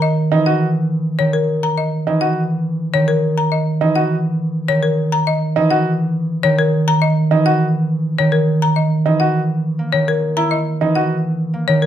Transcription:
Already playing: harp D#3
0.02 marimba D#5
0.31 harp E3, grand piano D#4
0.46 grand piano F#4, marimba F#5
1.19 harp D#3, marimba C#5
1.33 marimba A#4
1.63 marimba A#5
1.78 marimba D#5
2.07 harp E3, grand piano D#4
2.21 grand piano F#4, marimba F#5
2.94 harp D#3, marimba C#5
3.08 marimba A#4
3.38 marimba A#5
3.52 marimba D#5
3.81 harp E3, grand piano D#4
3.95 grand piano F#4, marimba F#5
4.68 harp D#3, marimba C#5
4.83 marimba A#4
5.12 marimba A#5
5.27 marimba D#5
5.56 harp E3, grand piano D#4
5.71 grand piano F#4, marimba F#5
6.43 harp D#3, marimba C#5
6.59 marimba A#4
6.88 marimba A#5
7.02 marimba D#5
7.31 harp E3, grand piano D#4
7.46 grand piano F#4, marimba F#5
8.19 harp D#3, marimba C#5
8.32 marimba A#4
8.62 marimba A#5
8.76 marimba D#5
9.06 harp E3, grand piano D#4
9.20 grand piano F#4, marimba F#5
9.79 harp A#3
9.93 harp D#3, marimba C#5
10.08 marimba A#4
10.37 grand piano E4, marimba A#5
10.51 marimba D#5
10.81 harp E3, grand piano D#4
10.95 grand piano F#4, marimba F#5
11.54 harp A#3
11.68 harp D#3, marimba C#5
11.82 marimba A#4

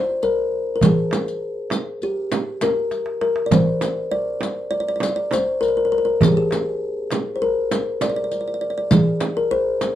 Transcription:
Already playing: kalimba C5
0.22 kalimba A#4, riq, darbuka ka
0.36 darbuka ka
0.51 darbuka ka
0.76 kalimba A#4
0.81 kalimba G#4, riq, darbuka dum, frame drum
1.11 riq, darbuka tek, frame drum
1.26 riq, darbuka ka
1.70 riq, darbuka tek, frame drum
2.01 kalimba G4, riq, darbuka ka
2.32 riq, darbuka tek, frame drum
2.61 kalimba A#4, riq, darbuka tek, frame drum
2.91 riq, darbuka tek
3.06 darbuka ka
3.21 kalimba A#4, darbuka tek
3.36 darbuka ka
3.46 kalimba D5
3.51 kalimba C5, riq, darbuka dum, frame drum
3.81 riq, darbuka tek, frame drum
3.97 darbuka ka
4.12 kalimba D5
4.41 riq, darbuka tek, frame drum
4.71 kalimba D5, darbuka ka
4.80 kalimba D5
4.88 kalimba D5
4.96 kalimba D5
5.00 kalimba D5, riq, darbuka tek, frame drum
5.09 kalimba D5
5.16 kalimba D5
5.31 kalimba C5, riq, darbuka tek, frame drum
5.61 kalimba A#4, riq, darbuka ka
5.68 kalimba A#4
5.75 kalimba A#4, darbuka ka
5.85 kalimba A#4
5.90 kalimba A#4, darbuka ka
5.98 kalimba A#4
6.05 kalimba A#4
6.21 kalimba G#4, riq, darbuka dum, frame drum
6.28 kalimba G4
6.37 kalimba G#4
6.51 riq, darbuka tek, frame drum
6.67 darbuka ka
7.11 riq, darbuka tek, frame drum
7.36 kalimba C5
7.42 kalimba A#4, darbuka ka
7.71 riq, darbuka tek, frame drum
8.01 kalimba D5, riq, darbuka tek, frame drum
8.10 kalimba D5
8.16 kalimba D5
8.24 kalimba D5
8.32 kalimba D5, riq, darbuka ka
8.41 kalimba D5
8.46 kalimba D5, darbuka ka
8.54 kalimba D5
8.61 kalimba D5, darbuka ka
8.70 kalimba D5
8.78 kalimba D5
8.91 kalimba G#4, riq, frame drum, darbuka dum
9.20 riq, darbuka tek, frame drum
9.37 kalimba A#4, darbuka ka
9.51 kalimba C5
9.81 riq, darbuka tek, frame drum

